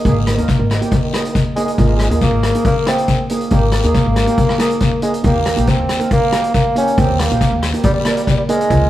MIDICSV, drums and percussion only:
0, 0, Header, 1, 2, 480
1, 0, Start_track
1, 0, Key_signature, -4, "major"
1, 0, Tempo, 432277
1, 59, Time_signature, 4, 2, 24, 8
1, 9879, End_track
2, 0, Start_track
2, 0, Title_t, "Drums"
2, 57, Note_on_c, 9, 36, 107
2, 57, Note_on_c, 9, 74, 65
2, 60, Note_on_c, 9, 42, 59
2, 168, Note_off_c, 9, 36, 0
2, 168, Note_off_c, 9, 74, 0
2, 171, Note_off_c, 9, 42, 0
2, 298, Note_on_c, 9, 37, 87
2, 298, Note_on_c, 9, 42, 93
2, 409, Note_off_c, 9, 37, 0
2, 409, Note_off_c, 9, 42, 0
2, 425, Note_on_c, 9, 42, 68
2, 533, Note_on_c, 9, 73, 68
2, 536, Note_off_c, 9, 42, 0
2, 539, Note_on_c, 9, 36, 93
2, 544, Note_on_c, 9, 42, 65
2, 644, Note_off_c, 9, 73, 0
2, 650, Note_off_c, 9, 36, 0
2, 655, Note_off_c, 9, 42, 0
2, 777, Note_on_c, 9, 73, 63
2, 786, Note_on_c, 9, 37, 78
2, 786, Note_on_c, 9, 42, 81
2, 888, Note_off_c, 9, 73, 0
2, 897, Note_off_c, 9, 37, 0
2, 897, Note_off_c, 9, 42, 0
2, 910, Note_on_c, 9, 42, 62
2, 1015, Note_on_c, 9, 74, 62
2, 1019, Note_off_c, 9, 42, 0
2, 1019, Note_on_c, 9, 36, 116
2, 1019, Note_on_c, 9, 42, 66
2, 1126, Note_off_c, 9, 74, 0
2, 1130, Note_off_c, 9, 36, 0
2, 1130, Note_off_c, 9, 42, 0
2, 1253, Note_on_c, 9, 73, 66
2, 1266, Note_on_c, 9, 37, 95
2, 1266, Note_on_c, 9, 42, 90
2, 1364, Note_off_c, 9, 73, 0
2, 1377, Note_off_c, 9, 37, 0
2, 1377, Note_off_c, 9, 42, 0
2, 1388, Note_on_c, 9, 42, 63
2, 1499, Note_off_c, 9, 42, 0
2, 1499, Note_on_c, 9, 73, 68
2, 1501, Note_on_c, 9, 36, 96
2, 1503, Note_on_c, 9, 42, 69
2, 1610, Note_off_c, 9, 73, 0
2, 1612, Note_off_c, 9, 36, 0
2, 1614, Note_off_c, 9, 42, 0
2, 1735, Note_on_c, 9, 42, 85
2, 1846, Note_off_c, 9, 42, 0
2, 1864, Note_on_c, 9, 42, 65
2, 1975, Note_off_c, 9, 42, 0
2, 1979, Note_on_c, 9, 36, 102
2, 1979, Note_on_c, 9, 74, 62
2, 1981, Note_on_c, 9, 42, 61
2, 2090, Note_off_c, 9, 36, 0
2, 2090, Note_off_c, 9, 74, 0
2, 2092, Note_off_c, 9, 42, 0
2, 2213, Note_on_c, 9, 37, 79
2, 2213, Note_on_c, 9, 42, 82
2, 2324, Note_off_c, 9, 37, 0
2, 2324, Note_off_c, 9, 42, 0
2, 2344, Note_on_c, 9, 42, 62
2, 2455, Note_off_c, 9, 42, 0
2, 2455, Note_on_c, 9, 42, 57
2, 2459, Note_on_c, 9, 36, 95
2, 2460, Note_on_c, 9, 73, 67
2, 2566, Note_off_c, 9, 42, 0
2, 2570, Note_off_c, 9, 36, 0
2, 2571, Note_off_c, 9, 73, 0
2, 2699, Note_on_c, 9, 37, 81
2, 2699, Note_on_c, 9, 42, 79
2, 2704, Note_on_c, 9, 73, 67
2, 2810, Note_off_c, 9, 37, 0
2, 2810, Note_off_c, 9, 42, 0
2, 2816, Note_off_c, 9, 73, 0
2, 2827, Note_on_c, 9, 42, 63
2, 2938, Note_off_c, 9, 42, 0
2, 2940, Note_on_c, 9, 42, 57
2, 2941, Note_on_c, 9, 36, 116
2, 2949, Note_on_c, 9, 74, 69
2, 3051, Note_off_c, 9, 42, 0
2, 3052, Note_off_c, 9, 36, 0
2, 3060, Note_off_c, 9, 74, 0
2, 3182, Note_on_c, 9, 37, 91
2, 3182, Note_on_c, 9, 42, 87
2, 3190, Note_on_c, 9, 73, 75
2, 3293, Note_off_c, 9, 37, 0
2, 3293, Note_off_c, 9, 42, 0
2, 3301, Note_off_c, 9, 73, 0
2, 3311, Note_on_c, 9, 42, 58
2, 3418, Note_off_c, 9, 42, 0
2, 3418, Note_on_c, 9, 42, 68
2, 3421, Note_on_c, 9, 36, 93
2, 3426, Note_on_c, 9, 73, 74
2, 3529, Note_off_c, 9, 42, 0
2, 3532, Note_off_c, 9, 36, 0
2, 3537, Note_off_c, 9, 73, 0
2, 3659, Note_on_c, 9, 42, 85
2, 3770, Note_off_c, 9, 42, 0
2, 3784, Note_on_c, 9, 42, 61
2, 3892, Note_off_c, 9, 42, 0
2, 3892, Note_on_c, 9, 42, 60
2, 3900, Note_on_c, 9, 36, 101
2, 3911, Note_on_c, 9, 74, 76
2, 4003, Note_off_c, 9, 42, 0
2, 4011, Note_off_c, 9, 36, 0
2, 4022, Note_off_c, 9, 74, 0
2, 4130, Note_on_c, 9, 37, 88
2, 4130, Note_on_c, 9, 42, 85
2, 4241, Note_off_c, 9, 37, 0
2, 4241, Note_off_c, 9, 42, 0
2, 4257, Note_on_c, 9, 42, 64
2, 4368, Note_off_c, 9, 42, 0
2, 4378, Note_on_c, 9, 42, 70
2, 4381, Note_on_c, 9, 36, 90
2, 4389, Note_on_c, 9, 73, 70
2, 4489, Note_off_c, 9, 42, 0
2, 4492, Note_off_c, 9, 36, 0
2, 4500, Note_off_c, 9, 73, 0
2, 4619, Note_on_c, 9, 37, 77
2, 4619, Note_on_c, 9, 42, 86
2, 4630, Note_on_c, 9, 73, 74
2, 4730, Note_off_c, 9, 37, 0
2, 4730, Note_off_c, 9, 42, 0
2, 4741, Note_off_c, 9, 73, 0
2, 4743, Note_on_c, 9, 42, 65
2, 4854, Note_off_c, 9, 42, 0
2, 4859, Note_on_c, 9, 42, 66
2, 4862, Note_on_c, 9, 36, 108
2, 4867, Note_on_c, 9, 74, 65
2, 4970, Note_off_c, 9, 42, 0
2, 4973, Note_off_c, 9, 36, 0
2, 4978, Note_off_c, 9, 74, 0
2, 4986, Note_on_c, 9, 37, 78
2, 5097, Note_off_c, 9, 37, 0
2, 5102, Note_on_c, 9, 37, 91
2, 5102, Note_on_c, 9, 42, 104
2, 5108, Note_on_c, 9, 73, 76
2, 5213, Note_off_c, 9, 37, 0
2, 5213, Note_off_c, 9, 42, 0
2, 5219, Note_off_c, 9, 73, 0
2, 5224, Note_on_c, 9, 42, 64
2, 5334, Note_off_c, 9, 42, 0
2, 5334, Note_on_c, 9, 42, 74
2, 5341, Note_on_c, 9, 36, 99
2, 5352, Note_on_c, 9, 73, 69
2, 5445, Note_off_c, 9, 42, 0
2, 5452, Note_off_c, 9, 36, 0
2, 5463, Note_off_c, 9, 73, 0
2, 5574, Note_on_c, 9, 42, 90
2, 5685, Note_off_c, 9, 42, 0
2, 5705, Note_on_c, 9, 42, 68
2, 5815, Note_off_c, 9, 42, 0
2, 5815, Note_on_c, 9, 42, 63
2, 5823, Note_on_c, 9, 36, 106
2, 5830, Note_on_c, 9, 74, 70
2, 5926, Note_off_c, 9, 42, 0
2, 5934, Note_off_c, 9, 36, 0
2, 5941, Note_off_c, 9, 74, 0
2, 6059, Note_on_c, 9, 37, 89
2, 6059, Note_on_c, 9, 42, 80
2, 6170, Note_off_c, 9, 37, 0
2, 6170, Note_off_c, 9, 42, 0
2, 6185, Note_on_c, 9, 42, 60
2, 6296, Note_off_c, 9, 42, 0
2, 6298, Note_on_c, 9, 42, 61
2, 6303, Note_on_c, 9, 36, 90
2, 6313, Note_on_c, 9, 73, 73
2, 6409, Note_off_c, 9, 42, 0
2, 6414, Note_off_c, 9, 36, 0
2, 6424, Note_off_c, 9, 73, 0
2, 6540, Note_on_c, 9, 37, 77
2, 6540, Note_on_c, 9, 42, 80
2, 6555, Note_on_c, 9, 73, 78
2, 6651, Note_off_c, 9, 37, 0
2, 6651, Note_off_c, 9, 42, 0
2, 6665, Note_on_c, 9, 42, 59
2, 6667, Note_off_c, 9, 73, 0
2, 6776, Note_off_c, 9, 42, 0
2, 6782, Note_on_c, 9, 42, 62
2, 6785, Note_on_c, 9, 36, 108
2, 6787, Note_on_c, 9, 74, 74
2, 6893, Note_off_c, 9, 42, 0
2, 6896, Note_off_c, 9, 36, 0
2, 6898, Note_off_c, 9, 74, 0
2, 7021, Note_on_c, 9, 37, 95
2, 7021, Note_on_c, 9, 42, 85
2, 7033, Note_on_c, 9, 73, 77
2, 7133, Note_off_c, 9, 37, 0
2, 7133, Note_off_c, 9, 42, 0
2, 7144, Note_off_c, 9, 73, 0
2, 7149, Note_on_c, 9, 42, 62
2, 7260, Note_off_c, 9, 42, 0
2, 7264, Note_on_c, 9, 42, 64
2, 7265, Note_on_c, 9, 73, 75
2, 7267, Note_on_c, 9, 36, 95
2, 7375, Note_off_c, 9, 42, 0
2, 7376, Note_off_c, 9, 73, 0
2, 7378, Note_off_c, 9, 36, 0
2, 7506, Note_on_c, 9, 42, 84
2, 7617, Note_off_c, 9, 42, 0
2, 7633, Note_on_c, 9, 42, 61
2, 7744, Note_off_c, 9, 42, 0
2, 7746, Note_on_c, 9, 74, 83
2, 7748, Note_on_c, 9, 36, 110
2, 7748, Note_on_c, 9, 42, 58
2, 7858, Note_off_c, 9, 74, 0
2, 7859, Note_off_c, 9, 36, 0
2, 7859, Note_off_c, 9, 42, 0
2, 7985, Note_on_c, 9, 37, 90
2, 7985, Note_on_c, 9, 42, 87
2, 8096, Note_off_c, 9, 37, 0
2, 8096, Note_off_c, 9, 42, 0
2, 8107, Note_on_c, 9, 42, 62
2, 8218, Note_off_c, 9, 42, 0
2, 8227, Note_on_c, 9, 36, 88
2, 8227, Note_on_c, 9, 73, 81
2, 8229, Note_on_c, 9, 42, 67
2, 8338, Note_off_c, 9, 36, 0
2, 8338, Note_off_c, 9, 73, 0
2, 8340, Note_off_c, 9, 42, 0
2, 8467, Note_on_c, 9, 37, 83
2, 8467, Note_on_c, 9, 42, 84
2, 8473, Note_on_c, 9, 73, 86
2, 8578, Note_off_c, 9, 37, 0
2, 8578, Note_off_c, 9, 42, 0
2, 8584, Note_off_c, 9, 73, 0
2, 8591, Note_on_c, 9, 42, 66
2, 8699, Note_off_c, 9, 42, 0
2, 8699, Note_on_c, 9, 42, 64
2, 8705, Note_on_c, 9, 36, 121
2, 8714, Note_on_c, 9, 74, 78
2, 8810, Note_off_c, 9, 42, 0
2, 8816, Note_off_c, 9, 36, 0
2, 8825, Note_off_c, 9, 74, 0
2, 8938, Note_on_c, 9, 37, 97
2, 8938, Note_on_c, 9, 42, 97
2, 8954, Note_on_c, 9, 73, 83
2, 9050, Note_off_c, 9, 37, 0
2, 9050, Note_off_c, 9, 42, 0
2, 9065, Note_off_c, 9, 73, 0
2, 9071, Note_on_c, 9, 42, 69
2, 9182, Note_off_c, 9, 42, 0
2, 9186, Note_on_c, 9, 36, 97
2, 9187, Note_on_c, 9, 42, 71
2, 9195, Note_on_c, 9, 73, 84
2, 9297, Note_off_c, 9, 36, 0
2, 9298, Note_off_c, 9, 42, 0
2, 9306, Note_off_c, 9, 73, 0
2, 9425, Note_on_c, 9, 42, 99
2, 9536, Note_off_c, 9, 42, 0
2, 9558, Note_on_c, 9, 42, 65
2, 9665, Note_off_c, 9, 42, 0
2, 9665, Note_on_c, 9, 36, 109
2, 9665, Note_on_c, 9, 42, 64
2, 9667, Note_on_c, 9, 74, 84
2, 9776, Note_off_c, 9, 36, 0
2, 9776, Note_off_c, 9, 42, 0
2, 9778, Note_off_c, 9, 74, 0
2, 9879, End_track
0, 0, End_of_file